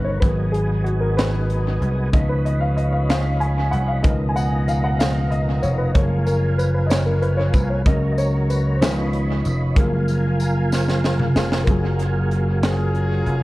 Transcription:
Already playing: slap bass G1, tonewheel organ B2 D#3 C#4 A#4, upright piano D#3 A#3 C#4 F#4 A#4 B4
0.04 upright piano C#5
0.20 slap bass G#1, upright piano F#3 B3 A#4 B4, tonewheel organ F#3 B3 D#4 G#4, kick, closed hi-hat
0.52 upright piano G#4, closed hi-hat
0.84 upright piano F#4, closed hi-hat
1.00 upright piano A#4
1.17 upright piano B4, snare, closed hi-hat
1.50 closed hi-hat
1.81 slap bass C2, closed hi-hat
2.13 slap bass C#2, upright piano D#3 F3 B3 D#5, tonewheel organ F3 C#4 D#4 B4, kick, closed hi-hat
2.29 upright piano B4
2.45 upright piano D#5, closed hi-hat
2.60 upright piano F5
2.77 upright piano D#5, closed hi-hat
2.92 upright piano F5
3.09 upright piano F5, snare, closed hi-hat
3.40 upright piano G#5, closed hi-hat
3.71 slap bass C2, upright piano F#5, closed hi-hat
3.88 upright piano F5
4.03 slap bass C#2, tonewheel organ B2 F3 D#4 A#4, upright piano D#3 F3 A#3 B3 D#5, kick, closed hi-hat
4.29 upright piano G#5
4.36 upright piano F#5, closed hi-hat, tambourine
4.68 upright piano F5, closed hi-hat, tambourine
4.84 upright piano F#5
4.99 upright piano F5, snare, closed hi-hat, tambourine
5.30 upright piano D#5, closed hi-hat
5.63 slap bass F1, upright piano C#5, closed hi-hat, tambourine
5.78 upright piano B4
5.94 slap bass F#1, upright piano F3 G#3 A#3 C#5, tonewheel organ F3 A#3 F4 G#4, kick, closed hi-hat
6.27 upright piano A#4, closed hi-hat, tambourine
6.58 upright piano B4, closed hi-hat, tambourine
6.74 upright piano B4
6.87 upright piano C#5 D#5, tambourine
6.91 snare, closed hi-hat
7.06 upright piano A#4
7.22 upright piano B4, closed hi-hat
7.37 upright piano C#5
7.54 slap bass C2, upright piano B4, kick, closed hi-hat, tambourine
7.70 upright piano C#5
7.86 slap bass C#2, upright piano C#3 F#3 A#3 D#5, tonewheel organ F#3 A#3 C#4 A#4, kick, closed hi-hat
8.12 upright piano D#5
8.18 upright piano C#5, closed hi-hat, tambourine
8.50 upright piano B4, closed hi-hat, tambourine
8.75 upright piano C5
8.81 slap bass C#2, upright piano D#3 F3 B3 C#5, tonewheel organ F3 C#4 D#4 B4, snare, closed hi-hat, tambourine
9.13 closed hi-hat
9.45 slap bass F1, closed hi-hat, tambourine
9.76 slap bass F#1, upright piano F3 G#3 A#3, tonewheel organ F3 A#3 F4 G#4, kick, closed hi-hat
10.08 closed hi-hat, tambourine
10.40 closed hi-hat, tambourine
10.72 snare, tambourine
10.88 snare
11.04 snare
11.19 mid tom
11.35 slap bass F1, upright piano F3 G#3 A#3, snare, tambourine
11.52 snare
11.64 slap bass F#1, upright piano F#3 A#3 F4, tonewheel organ F#3 A#3 F4 G#4, kick, closed hi-hat
11.70 upright piano G#4
11.99 closed hi-hat
12.31 closed hi-hat
12.63 horn section C#4 F4 G#4, snare, closed hi-hat
12.95 closed hi-hat
13.26 slap bass F1, closed hi-hat

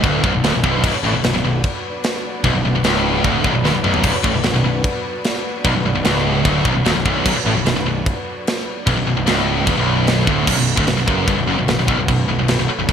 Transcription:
Already playing: string section F#3 B3 D4 F#4 B4
0.03 picked electric bass D1, distorted electric guitar D2, kick, china
0.23 picked electric bass B0, distorted electric guitar B1, kick
0.34 picked electric bass B0, distorted electric guitar B1
0.44 picked electric bass D1, distorted electric guitar D2, snare, china
0.54 picked electric bass B0, distorted electric guitar B1
0.63 picked electric bass B0, distorted electric guitar B1, kick
0.83 picked electric bass B0, distorted electric guitar B1, kick, china, crash
0.94 muted distorted electric guitar stroke, muted picked electric bass stroke, muted overdriven electric guitar stroke
1.03 picked electric bass A1, distorted electric guitar A2
1.14 picked electric bass B0, distorted electric guitar B1
1.24 picked electric bass B0, distorted electric guitar B1, snare, china
1.34 picked electric bass B0, distorted electric guitar B1
1.43 picked electric bass B0, distorted electric guitar B1
1.64 kick, china
2.04 snare, china
2.44 picked electric bass B0, distorted electric guitar B1, kick, china
2.53 picked electric bass B0, distorted electric guitar B1
2.63 picked electric bass B0, distorted electric guitar B1
2.73 picked electric bass B0, distorted electric guitar B1
2.83 picked electric bass C#1, distorted electric guitar C#2, snare, china
3.24 picked electric bass D1, distorted electric guitar D2, kick, china
3.44 picked electric bass B0, distorted electric guitar B1, kick
3.53 picked electric bass B0, distorted electric guitar B1
3.64 picked electric bass D1, distorted electric guitar D2, snare
3.73 picked electric bass B0, distorted electric guitar B1
3.84 picked electric bass B0, distorted electric guitar B1, mid tom
3.94 floor tom
4.03 picked electric bass B0, distorted electric guitar B1, kick, china, crash
4.13 muted picked electric bass stroke, muted distorted electric guitar stroke, muted overdriven electric guitar stroke
4.23 picked electric bass A1, distorted electric guitar A2, kick
4.33 picked electric bass B0, distorted electric guitar B1
4.43 picked electric bass B0, distorted electric guitar B1, snare, china
4.54 picked electric bass B0, distorted electric guitar B1
4.64 picked electric bass B0, distorted electric guitar B1
4.84 kick, china
5.24 snare, china
5.64 picked electric bass B0, distorted electric guitar B1, kick, china
5.75 picked electric bass B0, distorted electric guitar B1
5.85 picked electric bass B0, distorted electric guitar B1
5.95 picked electric bass B0, distorted electric guitar B1
6.05 picked electric bass C#1, distorted electric guitar C#2, snare, china
6.45 picked electric bass D1, distorted electric guitar D2, kick, china
6.65 picked electric bass B0, distorted electric guitar B1, kick
6.75 picked electric bass B0, distorted electric guitar B1
6.84 picked electric bass D1, distorted electric guitar D2, snare, china
6.94 picked electric bass B0, distorted electric guitar B1
7.05 picked electric bass B0, distorted electric guitar B1, kick
7.25 picked electric bass B0, distorted electric guitar B1, kick, crash, china
7.35 muted picked electric bass stroke, muted distorted electric guitar stroke, muted overdriven electric guitar stroke
7.45 picked electric bass A1, distorted electric guitar A2
7.55 picked electric bass B0, distorted electric guitar B1
7.65 picked electric bass B0, distorted electric guitar B1, snare, china
7.75 picked electric bass B0, distorted electric guitar B1
7.86 picked electric bass B0, distorted electric guitar B1
8.06 kick, china
8.47 snare, china
8.87 picked electric bass B0, distorted electric guitar B1, kick, china
8.97 picked electric bass B0, distorted electric guitar B1
9.07 picked electric bass B0, distorted electric guitar B1
9.17 picked electric bass B0, distorted electric guitar B1
9.26 picked electric bass C#1, distorted electric guitar C#2, snare, china
9.66 picked electric bass E1, distorted electric guitar E2, kick, china
9.77 picked electric bass B0, distorted electric guitar B1
10.07 snare, china
10.27 picked electric bass D1, distorted electric guitar D2, kick
10.47 picked electric bass B0, distorted electric guitar B1, string section D3 F#3 B3 F#4 B4, kick, crash, china
10.58 picked electric bass B0, distorted electric guitar B1
10.77 picked electric bass D1, distorted electric guitar D2, kick
10.87 picked electric bass B0, distorted electric guitar B1, snare, china
10.97 picked electric bass B0, distorted electric guitar B1
11.07 picked electric bass F#1, distorted electric guitar F#2, kick
11.27 picked electric bass G1, distorted electric guitar G2, kick, china
11.38 picked electric bass B0, distorted electric guitar B1
11.47 picked electric bass F#1, distorted electric guitar F#2
11.58 picked electric bass B0, distorted electric guitar B1
11.67 picked electric bass B0, distorted electric guitar B1, snare, china
11.78 picked electric bass B0, distorted electric guitar B1
11.88 picked electric bass B0, distorted electric guitar B1, kick
11.98 picked electric bass B0, distorted electric guitar B1
12.08 picked electric bass B0, distorted electric guitar B1, kick, china
12.28 picked electric bass B0, distorted electric guitar B1
12.39 picked electric bass B0, distorted electric guitar B1
12.48 picked electric bass B0, distorted electric guitar B1, snare, china
12.59 picked electric bass B0, distorted electric guitar B1
12.68 muted overdriven electric guitar stroke, muted distorted electric guitar stroke, muted picked electric bass stroke
12.79 picked electric bass B0, distorted electric guitar B1
12.89 picked electric bass B0, distorted electric guitar B1, kick, china

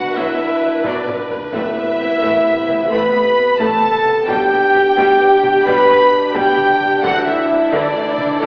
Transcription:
Already playing: trombone section B2 D4, french horn section F#4, viola section B4, violin section F#5, trumpet section F#5
0.15 double bass section B1, cello section B2, viola section F#3, french horn section E4, violin section E5, trumpet section E5
0.38 double bass section B1, cello section B2, viola section B3
0.84 double bass section B1, cello section B2, viola section F#3, french horn section D4, violin section D5, trumpet section D5, taiko low-mid
1.07 taiko low-mid
1.30 taiko low
1.52 double bass section A1, cello section A2, timpani A2, trombone section C3 B3, viola section A3, french horn section E4, violin section E5, trumpet section E5, taiko
1.76 double bass section A1, cello section A2, viola section B3
1.99 double bass section A1, cello section A2, viola section C4
2.21 double bass section A1, cello section A2, viola section A3, taiko
2.44 double bass section A1, cello section A2, viola section B3
2.67 double bass section A1, cello section A2, viola section C4, taiko mid
2.90 double bass section A1, cello section A2, viola section A3, french horn section B4, violin section B5, trumpet section B5
3.13 double bass section A1, cello section A2, viola section B3
3.59 double bass section A1, cello section A2, viola section A3, french horn section A4, violin section A5, trumpet section A5, taiko
3.83 taiko mid
4.05 taiko mid
4.27 double bass section B1, cello section B2, trombone section B2 D4, viola section G3 G4, french horn section G4, violin section G5, trumpet section G5, taiko
4.51 double bass section B1, cello section B2, viola section B3
4.74 double bass section B1, cello section B2, viola section D4
4.97 double bass section B1, cello section B2, viola section G3, taiko
5.19 double bass section B1, cello section B2, viola section B3
5.43 double bass section B1, cello section B2, viola section D4, taiko mid
5.65 double bass section B1, cello section B2, viola section G3, french horn section B4, violin section B5, trumpet section B5
5.89 double bass section B1, cello section B2, viola section B3, taiko rim
6.33 double bass section B1, cello section B2, viola section G3, french horn section G4, violin section G5, trumpet section G5, taiko
6.58 taiko mid
6.81 taiko mid
7.02 double bass section D2, cello section D3, timpani D3, trombone section E3, viola section E3 E4, french horn section F#4, violin section F#5, trumpet section F#5, taiko
7.25 double bass section D2, cello section D3, viola section A3, french horn section E4, violin section E5, trumpet section E5
7.50 double bass section D2, cello section D3, viola section D4
7.71 double bass section D2, cello section D3, viola section E3, french horn section D4, violin section D5, trumpet section D5, taiko
7.95 double bass section D2, cello section D3, viola section A3
8.18 double bass section D2, cello section D3, viola section D4, taiko mid
8.41 double bass section D2, cello section D3, viola section E3, french horn section A3, violin section A4, trumpet section A4

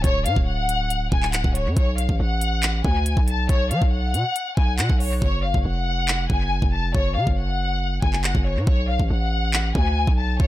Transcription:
0.04 808-style bass D1, violin section C#5, kick, closed hi-hat
0.25 808-style bass A2, violin section F5, closed hi-hat
0.36 808-style bass D1, kick
0.47 violin section F#5
0.69 closed hi-hat
0.90 closed hi-hat
1.12 808-style bass D1, violin section G#5, kick
1.23 clap
1.33 violin section F#5, clap, closed hi-hat
1.44 808-style bass D1, kick
1.55 violin section C#5, closed hi-hat
1.66 808-style bass F#2
1.77 808-style bass B1, violin section C#5, kick, closed hi-hat
1.98 violin section F5, closed hi-hat
2.09 808-style bass A1, kick
2.20 808-style bass A1, violin section F#5
2.41 closed hi-hat
2.63 clap, closed hi-hat
2.84 808-style bass D2, violin section G#5, kick
3.06 closed hi-hat
3.17 808-style bass B1, kick
3.28 violin section A5, closed hi-hat
3.49 808-style bass B1, violin section C#5, kick, closed hi-hat
3.71 808-style bass F#3, violin section F5, closed hi-hat
3.82 808-style bass B1, kick
3.92 violin section F#5
4.14 808-style bass B2, closed hi-hat
4.36 closed hi-hat
4.57 808-style bass B1, violin section G#5, kick
4.79 808-style bass B2, violin section F#5, clap, closed hi-hat
4.90 808-style bass B1, kick
5.00 violin section C#5, open hi-hat
5.22 808-style bass F#1, violin section C#5, kick
5.43 violin section F5
5.54 808-style bass F#1, kick
5.65 808-style bass F1, violin section F#5
6.08 clap
6.30 808-style bass F#1, violin section G#5, kick
6.62 808-style bass F1, kick
6.73 violin section A5
6.94 808-style bass F#1, violin section C#5, kick
7.16 808-style bass C#3, violin section F5
7.27 808-style bass F#1, kick
7.38 violin section F#5
8.02 808-style bass F#1, violin section G#5, kick
8.13 clap
8.24 violin section F#5, clap
8.35 808-style bass F#1, kick
8.45 violin section C#5
8.56 808-style bass A2
8.67 808-style bass B1, violin section C#5, kick
8.89 violin section F5
8.99 808-style bass A1, kick
9.10 808-style bass A1, violin section F#5
9.54 clap
9.75 808-style bass D2, violin section G#5, kick
10.07 808-style bass B1, kick
10.18 violin section A5
10.40 808-style bass B1, violin section C#5, kick

